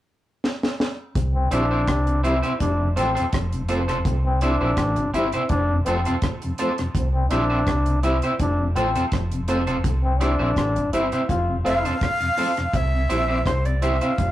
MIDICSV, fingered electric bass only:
0, 0, Header, 1, 2, 480
1, 0, Start_track
1, 0, Tempo, 723764
1, 766, Time_signature, 4, 2, 24, 8
1, 9494, End_track
2, 0, Start_track
2, 0, Title_t, "Fingered electric bass"
2, 0, Program_c, 0, 33
2, 767, Note_on_c, 0, 36, 100
2, 992, Note_off_c, 0, 36, 0
2, 1005, Note_on_c, 0, 34, 86
2, 1231, Note_off_c, 0, 34, 0
2, 1245, Note_on_c, 0, 36, 97
2, 1590, Note_off_c, 0, 36, 0
2, 1728, Note_on_c, 0, 29, 101
2, 1952, Note_off_c, 0, 29, 0
2, 1963, Note_on_c, 0, 33, 83
2, 2083, Note_off_c, 0, 33, 0
2, 2209, Note_on_c, 0, 29, 82
2, 2660, Note_off_c, 0, 29, 0
2, 2688, Note_on_c, 0, 36, 105
2, 3031, Note_off_c, 0, 36, 0
2, 3057, Note_on_c, 0, 34, 91
2, 3160, Note_off_c, 0, 34, 0
2, 3164, Note_on_c, 0, 33, 103
2, 3284, Note_off_c, 0, 33, 0
2, 3290, Note_on_c, 0, 31, 87
2, 3397, Note_off_c, 0, 31, 0
2, 3404, Note_on_c, 0, 31, 81
2, 3524, Note_off_c, 0, 31, 0
2, 3646, Note_on_c, 0, 29, 103
2, 3870, Note_off_c, 0, 29, 0
2, 3883, Note_on_c, 0, 29, 88
2, 4003, Note_off_c, 0, 29, 0
2, 4609, Note_on_c, 0, 36, 100
2, 4832, Note_off_c, 0, 36, 0
2, 4849, Note_on_c, 0, 34, 84
2, 5072, Note_off_c, 0, 34, 0
2, 5087, Note_on_c, 0, 36, 98
2, 5431, Note_off_c, 0, 36, 0
2, 5569, Note_on_c, 0, 29, 101
2, 5792, Note_off_c, 0, 29, 0
2, 5805, Note_on_c, 0, 33, 88
2, 5924, Note_off_c, 0, 33, 0
2, 6050, Note_on_c, 0, 29, 83
2, 6501, Note_off_c, 0, 29, 0
2, 6528, Note_on_c, 0, 36, 99
2, 6871, Note_off_c, 0, 36, 0
2, 6894, Note_on_c, 0, 34, 90
2, 6999, Note_off_c, 0, 34, 0
2, 7007, Note_on_c, 0, 33, 96
2, 7125, Note_off_c, 0, 33, 0
2, 7136, Note_on_c, 0, 31, 89
2, 7240, Note_off_c, 0, 31, 0
2, 7246, Note_on_c, 0, 31, 76
2, 7365, Note_off_c, 0, 31, 0
2, 7489, Note_on_c, 0, 29, 97
2, 7713, Note_off_c, 0, 29, 0
2, 7725, Note_on_c, 0, 29, 79
2, 7844, Note_off_c, 0, 29, 0
2, 8447, Note_on_c, 0, 36, 101
2, 8671, Note_off_c, 0, 36, 0
2, 8690, Note_on_c, 0, 34, 77
2, 8913, Note_off_c, 0, 34, 0
2, 8927, Note_on_c, 0, 36, 96
2, 9271, Note_off_c, 0, 36, 0
2, 9409, Note_on_c, 0, 29, 98
2, 9494, Note_off_c, 0, 29, 0
2, 9494, End_track
0, 0, End_of_file